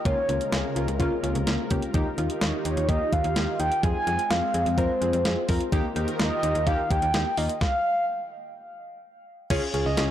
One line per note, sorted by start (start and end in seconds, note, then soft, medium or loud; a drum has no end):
0.00 3.79 A#4 medium
0.05 0.16 C#2 loud
0.05 1.92 C3 medium
0.05 1.92 C#3 medium
0.05 1.92 G#3 medium
0.05 0.19 A#3 medium
0.05 0.19 C#4 medium
0.05 0.19 F4 loud
0.05 5.68 F4 medium
0.05 0.49 C#5 medium
0.05 kick loud
0.05 closed hi-hat medium
0.29 0.40 C#2 loud
0.29 0.42 A#3 medium
0.29 0.42 C#4 medium
0.29 0.42 F4 medium
0.29 closed hi-hat medium
0.41 closed hi-hat medium
0.52 0.63 C#2 loud
0.52 0.66 A#3 medium
0.52 0.66 C#4 medium
0.52 0.66 G#4 medium
0.52 snare loud
0.52 closed hi-hat medium
0.76 0.87 C#2 loud
0.76 0.90 A#3 medium
0.76 0.90 C#4 medium
0.76 0.90 F4 medium
0.76 closed hi-hat medium
0.88 0.99 C#2 medium
0.88 closed hi-hat soft
1.00 1.10 C#2 loud
1.00 1.13 A#3 loud
1.00 1.13 C#4 loud
1.00 1.13 F4 loud
1.00 kick medium
1.00 closed hi-hat medium
1.23 1.34 C#2 medium
1.23 1.37 A#3 medium
1.23 1.37 C#4 medium
1.23 1.37 F4 loud
1.23 closed hi-hat medium
1.35 1.46 C#2 loud
1.35 closed hi-hat medium
1.47 1.58 C#2 loud
1.47 1.60 A#3 medium
1.47 1.60 C#4 medium
1.47 1.60 F4 medium
1.47 snare loud
1.47 closed hi-hat medium
1.71 1.81 C#2 loud
1.71 1.84 A#3 medium
1.71 1.84 C#4 medium
1.71 1.84 G4 loud
1.71 kick medium
1.71 closed hi-hat medium
1.82 closed hi-hat medium
1.94 2.05 D#2 loud
1.94 3.81 D#3 medium
1.94 2.08 A#3 loud
1.94 2.08 D#4 loud
1.94 3.81 D#4 medium
1.94 2.08 G4 loud
1.94 3.81 G4 medium
1.94 kick loud
1.94 closed hi-hat medium
2.18 2.29 D#2 loud
2.18 2.31 A#3 medium
2.18 2.31 D#4 medium
2.18 2.31 F4 medium
2.18 closed hi-hat medium
2.30 closed hi-hat medium
2.41 2.52 D#2 loud
2.41 2.55 A#3 medium
2.41 2.55 D#4 medium
2.41 2.55 G4 medium
2.41 2.52 C#5 medium
2.41 snare loud
2.41 closed hi-hat medium
2.65 2.76 D#2 medium
2.65 2.79 A#3 medium
2.65 2.79 D#4 medium
2.65 2.79 G4 medium
2.65 2.90 C#5 medium
2.65 closed hi-hat medium
2.77 2.88 D#2 medium
2.77 closed hi-hat medium
2.89 2.99 D#2 loud
2.89 3.02 A#3 medium
2.89 3.02 D#4 medium
2.89 3.02 G4 loud
2.89 3.14 D#5 medium
2.89 kick medium
2.89 closed hi-hat medium
3.12 3.23 D#2 medium
3.12 3.26 A#3 medium
3.12 3.26 D#4 medium
3.12 3.26 G4 medium
3.12 3.59 F5 loud
3.12 kick medium
3.12 closed hi-hat medium
3.24 3.35 D#2 loud
3.24 closed hi-hat medium
3.36 3.47 D#2 loud
3.36 3.49 A#3 medium
3.36 3.49 D#4 medium
3.36 3.49 G4 medium
3.36 snare loud
3.36 closed hi-hat medium
3.60 3.70 D#2 loud
3.60 3.73 A#3 medium
3.60 3.73 D#4 medium
3.60 3.73 G4 medium
3.60 3.82 G5 loud
3.60 closed hi-hat medium
3.72 closed hi-hat medium
3.83 3.94 F2 loud
3.83 5.70 G#3 medium
3.83 3.97 C4 medium
3.83 5.70 C4 medium
3.83 3.97 F4 medium
3.83 3.97 G#4 loud
3.83 4.32 G#5 loud
3.83 kick loud
3.83 closed hi-hat medium
4.07 4.18 F2 loud
4.07 4.20 C4 medium
4.07 4.20 F4 medium
4.07 4.20 G#4 medium
4.07 closed hi-hat medium
4.19 closed hi-hat medium
4.30 4.41 F2 loud
4.30 4.44 C4 medium
4.30 4.44 F4 medium
4.30 4.44 G#4 medium
4.30 4.79 F5 loud
4.30 snare loud
4.30 closed hi-hat medium
4.54 4.65 F2 medium
4.54 4.68 C4 medium
4.54 4.68 F4 medium
4.54 4.68 G#4 medium
4.54 closed hi-hat medium
4.66 4.77 F2 loud
4.66 closed hi-hat medium
4.78 4.88 F2 loud
4.78 4.91 C4 medium
4.78 4.91 F4 medium
4.78 4.91 A#4 loud
4.78 5.49 C5 medium
4.78 kick medium
4.78 closed hi-hat medium
5.01 5.12 F2 medium
5.01 5.15 C4 medium
5.01 5.15 F4 medium
5.01 5.15 G#4 medium
5.01 closed hi-hat medium
5.13 5.24 F2 loud
5.13 closed hi-hat medium
5.25 5.36 F2 loud
5.25 5.38 C4 medium
5.25 5.38 F4 medium
5.25 5.38 G#4 medium
5.25 snare loud
5.25 closed hi-hat medium
5.49 5.59 F2 loud
5.49 5.62 C4 medium
5.49 5.62 F4 medium
5.49 5.62 A#4 loud
5.49 kick medium
5.49 open hi-hat medium
5.61 closed hi-hat medium
5.72 5.83 D#2 loud
5.72 7.59 D#3 medium
5.72 5.86 A#3 loud
5.72 7.59 D#4 medium
5.72 5.86 D#4 loud
5.72 7.59 F4 medium
5.72 7.59 G4 medium
5.72 5.86 G4 loud
5.72 7.59 A#4 medium
5.72 kick loud
5.72 closed hi-hat medium
5.96 6.07 D#2 medium
5.96 6.09 A#3 medium
5.96 6.09 D#4 medium
5.96 6.09 G4 medium
5.96 closed hi-hat medium
6.08 closed hi-hat medium
6.19 6.30 D#2 loud
6.19 6.33 A#3 medium
6.19 6.33 D#4 medium
6.19 6.33 F4 medium
6.19 6.68 D#5 medium
6.19 snare loud
6.19 closed hi-hat medium
6.43 6.54 D#2 loud
6.43 6.57 A#3 medium
6.43 6.57 D#4 medium
6.43 6.57 G4 medium
6.43 closed hi-hat medium
6.55 6.66 D#2 loud
6.55 closed hi-hat medium
6.67 6.77 D#2 loud
6.67 6.80 A#3 loud
6.67 6.80 D#4 medium
6.67 6.80 G4 loud
6.67 6.92 F5 loud
6.67 kick medium
6.67 closed hi-hat medium
6.90 7.01 D#2 loud
6.90 7.04 A#3 medium
6.90 7.04 D#4 medium
6.90 7.04 G4 medium
6.90 7.39 G5 loud
6.90 kick medium
6.90 closed hi-hat medium
7.02 7.13 D#2 loud
7.02 closed hi-hat medium
7.14 7.25 D#2 loud
7.14 7.27 A#3 medium
7.14 7.27 D#4 medium
7.14 7.27 G4 medium
7.14 snare loud
7.14 closed hi-hat medium
7.37 7.48 D#2 medium
7.37 7.51 A#3 medium
7.37 7.51 D#4 medium
7.37 7.51 F4 medium
7.37 7.61 D#5 loud
7.37 open hi-hat medium
7.49 closed hi-hat medium
7.61 8.05 F5 loud
7.61 kick loud
7.61 snare medium
9.50 9.61 C#2 loud
9.50 10.11 C#3 medium
9.50 9.64 C#4 loud
9.50 10.11 C#4 medium
9.50 10.11 D#4 medium
9.50 9.64 F4 loud
9.50 10.11 F4 medium
9.50 9.64 G#4 loud
9.50 10.11 G#4 loud
9.50 9.58 C#5 loud
9.50 kick loud
9.50 closed hi-hat medium
9.50 crash loud
9.74 9.85 C#2 loud
9.74 9.87 C#4 medium
9.74 9.87 F4 medium
9.74 9.87 G#4 loud
9.74 closed hi-hat medium
9.86 9.96 C#2 medium
9.86 10.02 D#5 medium
9.97 10.08 C#2 loud
9.97 10.11 C#4 medium
9.97 10.11 F4 medium
9.97 10.11 G#4 loud
9.97 snare loud
9.97 closed hi-hat medium